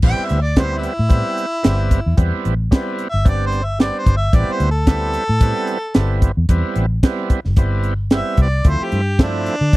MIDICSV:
0, 0, Header, 1, 6, 480
1, 0, Start_track
1, 0, Key_signature, 0, "minor"
1, 0, Tempo, 538600
1, 37, Time_signature, 4, 2, 24, 8
1, 8706, End_track
2, 0, Start_track
2, 0, Title_t, "Harmonica"
2, 0, Program_c, 0, 22
2, 58, Note_on_c, 0, 79, 97
2, 221, Note_on_c, 0, 76, 82
2, 235, Note_off_c, 0, 79, 0
2, 364, Note_off_c, 0, 76, 0
2, 377, Note_on_c, 0, 74, 82
2, 537, Note_on_c, 0, 72, 82
2, 551, Note_off_c, 0, 74, 0
2, 696, Note_on_c, 0, 64, 96
2, 709, Note_off_c, 0, 72, 0
2, 2089, Note_off_c, 0, 64, 0
2, 2769, Note_on_c, 0, 76, 97
2, 2917, Note_off_c, 0, 76, 0
2, 2929, Note_on_c, 0, 74, 89
2, 3077, Note_off_c, 0, 74, 0
2, 3090, Note_on_c, 0, 72, 80
2, 3243, Note_on_c, 0, 76, 77
2, 3257, Note_off_c, 0, 72, 0
2, 3391, Note_off_c, 0, 76, 0
2, 3396, Note_on_c, 0, 74, 78
2, 3553, Note_on_c, 0, 72, 81
2, 3567, Note_off_c, 0, 74, 0
2, 3709, Note_off_c, 0, 72, 0
2, 3715, Note_on_c, 0, 76, 100
2, 3879, Note_on_c, 0, 74, 88
2, 3892, Note_off_c, 0, 76, 0
2, 4034, Note_on_c, 0, 72, 78
2, 4047, Note_off_c, 0, 74, 0
2, 4190, Note_off_c, 0, 72, 0
2, 4200, Note_on_c, 0, 69, 118
2, 5602, Note_off_c, 0, 69, 0
2, 7265, Note_on_c, 0, 76, 85
2, 7484, Note_off_c, 0, 76, 0
2, 7505, Note_on_c, 0, 74, 84
2, 7742, Note_on_c, 0, 72, 91
2, 7755, Note_off_c, 0, 74, 0
2, 7876, Note_on_c, 0, 67, 75
2, 7890, Note_off_c, 0, 72, 0
2, 8201, Note_off_c, 0, 67, 0
2, 8225, Note_on_c, 0, 62, 93
2, 8706, Note_off_c, 0, 62, 0
2, 8706, End_track
3, 0, Start_track
3, 0, Title_t, "Tonewheel organ"
3, 0, Program_c, 1, 16
3, 32, Note_on_c, 1, 59, 61
3, 34, Note_on_c, 1, 60, 62
3, 35, Note_on_c, 1, 55, 63
3, 38, Note_on_c, 1, 64, 76
3, 353, Note_off_c, 1, 59, 0
3, 354, Note_off_c, 1, 60, 0
3, 355, Note_off_c, 1, 55, 0
3, 356, Note_off_c, 1, 64, 0
3, 508, Note_on_c, 1, 60, 64
3, 510, Note_on_c, 1, 55, 73
3, 510, Note_on_c, 1, 64, 85
3, 511, Note_on_c, 1, 59, 72
3, 831, Note_off_c, 1, 60, 0
3, 832, Note_off_c, 1, 55, 0
3, 832, Note_off_c, 1, 59, 0
3, 832, Note_off_c, 1, 64, 0
3, 969, Note_on_c, 1, 55, 68
3, 972, Note_on_c, 1, 59, 59
3, 976, Note_on_c, 1, 60, 63
3, 981, Note_on_c, 1, 64, 77
3, 1301, Note_off_c, 1, 55, 0
3, 1303, Note_off_c, 1, 59, 0
3, 1305, Note_off_c, 1, 60, 0
3, 1307, Note_off_c, 1, 64, 0
3, 1455, Note_on_c, 1, 55, 77
3, 1455, Note_on_c, 1, 59, 69
3, 1455, Note_on_c, 1, 64, 94
3, 1461, Note_on_c, 1, 60, 77
3, 1784, Note_off_c, 1, 55, 0
3, 1784, Note_off_c, 1, 59, 0
3, 1784, Note_off_c, 1, 64, 0
3, 1787, Note_off_c, 1, 60, 0
3, 1936, Note_on_c, 1, 55, 80
3, 1938, Note_on_c, 1, 60, 70
3, 1942, Note_on_c, 1, 59, 82
3, 1942, Note_on_c, 1, 64, 92
3, 2264, Note_off_c, 1, 55, 0
3, 2266, Note_off_c, 1, 60, 0
3, 2267, Note_off_c, 1, 59, 0
3, 2267, Note_off_c, 1, 64, 0
3, 2416, Note_on_c, 1, 55, 98
3, 2418, Note_on_c, 1, 64, 99
3, 2420, Note_on_c, 1, 60, 92
3, 2423, Note_on_c, 1, 59, 85
3, 2744, Note_off_c, 1, 55, 0
3, 2746, Note_off_c, 1, 64, 0
3, 2747, Note_off_c, 1, 60, 0
3, 2748, Note_off_c, 1, 59, 0
3, 2896, Note_on_c, 1, 55, 64
3, 2896, Note_on_c, 1, 60, 65
3, 2897, Note_on_c, 1, 59, 58
3, 2899, Note_on_c, 1, 62, 72
3, 3224, Note_off_c, 1, 55, 0
3, 3224, Note_off_c, 1, 60, 0
3, 3225, Note_off_c, 1, 59, 0
3, 3226, Note_off_c, 1, 62, 0
3, 3377, Note_on_c, 1, 55, 65
3, 3382, Note_on_c, 1, 59, 57
3, 3383, Note_on_c, 1, 60, 61
3, 3386, Note_on_c, 1, 62, 73
3, 3705, Note_off_c, 1, 55, 0
3, 3707, Note_off_c, 1, 59, 0
3, 3708, Note_off_c, 1, 60, 0
3, 3710, Note_off_c, 1, 62, 0
3, 3857, Note_on_c, 1, 55, 77
3, 3859, Note_on_c, 1, 59, 62
3, 3862, Note_on_c, 1, 60, 66
3, 3862, Note_on_c, 1, 64, 84
3, 4185, Note_off_c, 1, 55, 0
3, 4186, Note_off_c, 1, 59, 0
3, 4187, Note_off_c, 1, 64, 0
3, 4188, Note_off_c, 1, 60, 0
3, 4345, Note_on_c, 1, 55, 87
3, 4348, Note_on_c, 1, 60, 70
3, 4349, Note_on_c, 1, 59, 74
3, 4349, Note_on_c, 1, 64, 86
3, 4669, Note_off_c, 1, 55, 0
3, 4671, Note_off_c, 1, 59, 0
3, 4671, Note_off_c, 1, 60, 0
3, 4671, Note_off_c, 1, 64, 0
3, 4831, Note_on_c, 1, 55, 81
3, 4832, Note_on_c, 1, 59, 79
3, 4835, Note_on_c, 1, 64, 95
3, 4837, Note_on_c, 1, 60, 72
3, 5152, Note_off_c, 1, 55, 0
3, 5153, Note_off_c, 1, 59, 0
3, 5154, Note_off_c, 1, 64, 0
3, 5155, Note_off_c, 1, 60, 0
3, 5301, Note_on_c, 1, 55, 75
3, 5304, Note_on_c, 1, 64, 88
3, 5305, Note_on_c, 1, 59, 69
3, 5309, Note_on_c, 1, 60, 69
3, 5627, Note_off_c, 1, 55, 0
3, 5629, Note_off_c, 1, 59, 0
3, 5629, Note_off_c, 1, 64, 0
3, 5631, Note_off_c, 1, 60, 0
3, 5790, Note_on_c, 1, 59, 85
3, 5793, Note_on_c, 1, 55, 91
3, 5794, Note_on_c, 1, 60, 79
3, 5797, Note_on_c, 1, 64, 91
3, 6112, Note_off_c, 1, 59, 0
3, 6114, Note_off_c, 1, 55, 0
3, 6114, Note_off_c, 1, 60, 0
3, 6116, Note_off_c, 1, 64, 0
3, 6276, Note_on_c, 1, 55, 98
3, 6277, Note_on_c, 1, 59, 86
3, 6278, Note_on_c, 1, 60, 85
3, 6280, Note_on_c, 1, 64, 102
3, 6595, Note_off_c, 1, 55, 0
3, 6596, Note_off_c, 1, 59, 0
3, 6596, Note_off_c, 1, 60, 0
3, 6597, Note_off_c, 1, 64, 0
3, 6751, Note_on_c, 1, 55, 82
3, 6753, Note_on_c, 1, 60, 75
3, 6755, Note_on_c, 1, 64, 89
3, 6756, Note_on_c, 1, 59, 72
3, 7073, Note_off_c, 1, 55, 0
3, 7074, Note_off_c, 1, 60, 0
3, 7075, Note_off_c, 1, 64, 0
3, 7076, Note_off_c, 1, 59, 0
3, 7237, Note_on_c, 1, 59, 59
3, 7238, Note_on_c, 1, 55, 64
3, 7238, Note_on_c, 1, 64, 68
3, 7242, Note_on_c, 1, 60, 53
3, 7556, Note_off_c, 1, 59, 0
3, 7557, Note_off_c, 1, 55, 0
3, 7557, Note_off_c, 1, 64, 0
3, 7559, Note_off_c, 1, 60, 0
3, 7705, Note_on_c, 1, 57, 66
3, 7709, Note_on_c, 1, 60, 67
3, 7710, Note_on_c, 1, 53, 69
3, 7714, Note_on_c, 1, 64, 79
3, 8031, Note_off_c, 1, 57, 0
3, 8033, Note_off_c, 1, 53, 0
3, 8033, Note_off_c, 1, 60, 0
3, 8035, Note_off_c, 1, 64, 0
3, 8195, Note_on_c, 1, 60, 66
3, 8196, Note_on_c, 1, 57, 65
3, 8200, Note_on_c, 1, 53, 76
3, 8200, Note_on_c, 1, 64, 94
3, 8516, Note_off_c, 1, 57, 0
3, 8516, Note_off_c, 1, 60, 0
3, 8518, Note_off_c, 1, 53, 0
3, 8518, Note_off_c, 1, 64, 0
3, 8706, End_track
4, 0, Start_track
4, 0, Title_t, "Fingered electric bass"
4, 0, Program_c, 2, 33
4, 25, Note_on_c, 2, 33, 102
4, 136, Note_off_c, 2, 33, 0
4, 274, Note_on_c, 2, 38, 82
4, 769, Note_off_c, 2, 38, 0
4, 884, Note_on_c, 2, 45, 83
4, 1080, Note_off_c, 2, 45, 0
4, 1471, Note_on_c, 2, 31, 78
4, 1773, Note_off_c, 2, 31, 0
4, 1839, Note_on_c, 2, 40, 70
4, 1930, Note_off_c, 2, 40, 0
4, 1942, Note_on_c, 2, 40, 110
4, 2054, Note_off_c, 2, 40, 0
4, 2189, Note_on_c, 2, 33, 77
4, 2386, Note_off_c, 2, 33, 0
4, 2795, Note_on_c, 2, 31, 78
4, 3471, Note_off_c, 2, 31, 0
4, 3622, Note_on_c, 2, 31, 84
4, 3821, Note_off_c, 2, 31, 0
4, 3859, Note_on_c, 2, 33, 100
4, 3972, Note_off_c, 2, 33, 0
4, 4101, Note_on_c, 2, 38, 80
4, 4602, Note_off_c, 2, 38, 0
4, 4717, Note_on_c, 2, 45, 77
4, 4915, Note_off_c, 2, 45, 0
4, 5311, Note_on_c, 2, 31, 89
4, 5613, Note_off_c, 2, 31, 0
4, 5679, Note_on_c, 2, 40, 75
4, 5770, Note_off_c, 2, 40, 0
4, 5783, Note_on_c, 2, 40, 108
4, 5894, Note_off_c, 2, 40, 0
4, 6026, Note_on_c, 2, 33, 86
4, 6224, Note_off_c, 2, 33, 0
4, 6645, Note_on_c, 2, 31, 76
4, 7318, Note_off_c, 2, 31, 0
4, 7468, Note_on_c, 2, 36, 90
4, 7666, Note_off_c, 2, 36, 0
4, 7710, Note_on_c, 2, 38, 106
4, 7819, Note_off_c, 2, 38, 0
4, 7954, Note_on_c, 2, 43, 76
4, 8451, Note_off_c, 2, 43, 0
4, 8565, Note_on_c, 2, 50, 79
4, 8706, Note_off_c, 2, 50, 0
4, 8706, End_track
5, 0, Start_track
5, 0, Title_t, "Muted fingered electric bass strokes"
5, 2079, Note_on_c, 9, 29, 36
5, 2168, Note_off_c, 9, 29, 0
5, 3997, Note_on_c, 9, 29, 34
5, 4086, Note_off_c, 9, 29, 0
5, 5915, Note_on_c, 9, 29, 30
5, 6004, Note_off_c, 9, 29, 0
5, 7847, Note_on_c, 9, 29, 35
5, 7936, Note_off_c, 9, 29, 0
5, 8706, End_track
6, 0, Start_track
6, 0, Title_t, "Drums"
6, 19, Note_on_c, 9, 49, 98
6, 27, Note_on_c, 9, 36, 106
6, 109, Note_off_c, 9, 49, 0
6, 116, Note_off_c, 9, 36, 0
6, 262, Note_on_c, 9, 42, 57
6, 351, Note_off_c, 9, 42, 0
6, 503, Note_on_c, 9, 42, 82
6, 505, Note_on_c, 9, 36, 82
6, 506, Note_on_c, 9, 38, 116
6, 592, Note_off_c, 9, 42, 0
6, 595, Note_off_c, 9, 36, 0
6, 595, Note_off_c, 9, 38, 0
6, 744, Note_on_c, 9, 42, 66
6, 833, Note_off_c, 9, 42, 0
6, 978, Note_on_c, 9, 42, 74
6, 984, Note_on_c, 9, 36, 109
6, 1067, Note_off_c, 9, 42, 0
6, 1073, Note_off_c, 9, 36, 0
6, 1226, Note_on_c, 9, 42, 60
6, 1316, Note_off_c, 9, 42, 0
6, 1463, Note_on_c, 9, 42, 84
6, 1467, Note_on_c, 9, 38, 104
6, 1552, Note_off_c, 9, 42, 0
6, 1556, Note_off_c, 9, 38, 0
6, 1702, Note_on_c, 9, 42, 63
6, 1703, Note_on_c, 9, 36, 73
6, 1791, Note_off_c, 9, 42, 0
6, 1792, Note_off_c, 9, 36, 0
6, 1939, Note_on_c, 9, 42, 79
6, 1941, Note_on_c, 9, 36, 103
6, 2028, Note_off_c, 9, 42, 0
6, 2031, Note_off_c, 9, 36, 0
6, 2184, Note_on_c, 9, 42, 60
6, 2274, Note_off_c, 9, 42, 0
6, 2423, Note_on_c, 9, 36, 86
6, 2427, Note_on_c, 9, 42, 86
6, 2430, Note_on_c, 9, 38, 110
6, 2512, Note_off_c, 9, 36, 0
6, 2516, Note_off_c, 9, 42, 0
6, 2519, Note_off_c, 9, 38, 0
6, 2661, Note_on_c, 9, 42, 61
6, 2750, Note_off_c, 9, 42, 0
6, 2903, Note_on_c, 9, 36, 108
6, 2906, Note_on_c, 9, 42, 73
6, 2992, Note_off_c, 9, 36, 0
6, 2995, Note_off_c, 9, 42, 0
6, 3141, Note_on_c, 9, 42, 53
6, 3230, Note_off_c, 9, 42, 0
6, 3384, Note_on_c, 9, 42, 63
6, 3387, Note_on_c, 9, 38, 92
6, 3473, Note_off_c, 9, 42, 0
6, 3477, Note_off_c, 9, 38, 0
6, 3622, Note_on_c, 9, 36, 81
6, 3624, Note_on_c, 9, 42, 57
6, 3711, Note_off_c, 9, 36, 0
6, 3713, Note_off_c, 9, 42, 0
6, 3860, Note_on_c, 9, 42, 74
6, 3861, Note_on_c, 9, 36, 109
6, 3950, Note_off_c, 9, 36, 0
6, 3950, Note_off_c, 9, 42, 0
6, 4101, Note_on_c, 9, 42, 60
6, 4190, Note_off_c, 9, 42, 0
6, 4339, Note_on_c, 9, 42, 89
6, 4340, Note_on_c, 9, 36, 80
6, 4343, Note_on_c, 9, 38, 108
6, 4428, Note_off_c, 9, 42, 0
6, 4430, Note_off_c, 9, 36, 0
6, 4432, Note_off_c, 9, 38, 0
6, 4577, Note_on_c, 9, 42, 65
6, 4666, Note_off_c, 9, 42, 0
6, 4817, Note_on_c, 9, 42, 84
6, 4820, Note_on_c, 9, 36, 95
6, 4906, Note_off_c, 9, 42, 0
6, 4910, Note_off_c, 9, 36, 0
6, 5057, Note_on_c, 9, 42, 57
6, 5146, Note_off_c, 9, 42, 0
6, 5298, Note_on_c, 9, 42, 74
6, 5301, Note_on_c, 9, 38, 99
6, 5387, Note_off_c, 9, 42, 0
6, 5390, Note_off_c, 9, 38, 0
6, 5544, Note_on_c, 9, 36, 74
6, 5544, Note_on_c, 9, 42, 62
6, 5633, Note_off_c, 9, 36, 0
6, 5633, Note_off_c, 9, 42, 0
6, 5783, Note_on_c, 9, 42, 84
6, 5784, Note_on_c, 9, 36, 98
6, 5872, Note_off_c, 9, 42, 0
6, 5873, Note_off_c, 9, 36, 0
6, 6022, Note_on_c, 9, 42, 62
6, 6111, Note_off_c, 9, 42, 0
6, 6266, Note_on_c, 9, 36, 88
6, 6267, Note_on_c, 9, 42, 90
6, 6271, Note_on_c, 9, 38, 118
6, 6355, Note_off_c, 9, 36, 0
6, 6356, Note_off_c, 9, 42, 0
6, 6360, Note_off_c, 9, 38, 0
6, 6504, Note_on_c, 9, 42, 69
6, 6506, Note_on_c, 9, 36, 81
6, 6593, Note_off_c, 9, 42, 0
6, 6595, Note_off_c, 9, 36, 0
6, 6637, Note_on_c, 9, 38, 31
6, 6726, Note_off_c, 9, 38, 0
6, 6742, Note_on_c, 9, 42, 74
6, 6745, Note_on_c, 9, 36, 105
6, 6831, Note_off_c, 9, 42, 0
6, 6835, Note_off_c, 9, 36, 0
6, 6982, Note_on_c, 9, 42, 50
6, 7071, Note_off_c, 9, 42, 0
6, 7223, Note_on_c, 9, 42, 72
6, 7227, Note_on_c, 9, 38, 92
6, 7312, Note_off_c, 9, 42, 0
6, 7316, Note_off_c, 9, 38, 0
6, 7463, Note_on_c, 9, 42, 59
6, 7466, Note_on_c, 9, 36, 74
6, 7552, Note_off_c, 9, 42, 0
6, 7556, Note_off_c, 9, 36, 0
6, 7704, Note_on_c, 9, 42, 74
6, 7708, Note_on_c, 9, 36, 100
6, 7793, Note_off_c, 9, 42, 0
6, 7797, Note_off_c, 9, 36, 0
6, 7948, Note_on_c, 9, 42, 59
6, 8037, Note_off_c, 9, 42, 0
6, 8189, Note_on_c, 9, 36, 84
6, 8191, Note_on_c, 9, 42, 73
6, 8194, Note_on_c, 9, 38, 111
6, 8278, Note_off_c, 9, 36, 0
6, 8280, Note_off_c, 9, 42, 0
6, 8284, Note_off_c, 9, 38, 0
6, 8433, Note_on_c, 9, 42, 61
6, 8522, Note_off_c, 9, 42, 0
6, 8673, Note_on_c, 9, 36, 102
6, 8674, Note_on_c, 9, 42, 75
6, 8706, Note_off_c, 9, 36, 0
6, 8706, Note_off_c, 9, 42, 0
6, 8706, End_track
0, 0, End_of_file